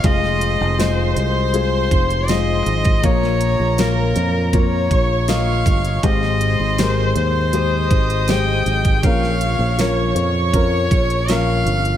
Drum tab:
HH |x-x-x-x-x-xxx-xx|x-x-x-x-x-x-x-xx|x-x-x-x-x-xxx-xx|x-x-x-x-x-xxx-xx|
SD |-o--o-------o---|-o--o-------o---|-o--o-------o---|-o--o-------o---|
BD |o---------o----o|o-------o-o---o-|o---------o----o|o-------o-o-----|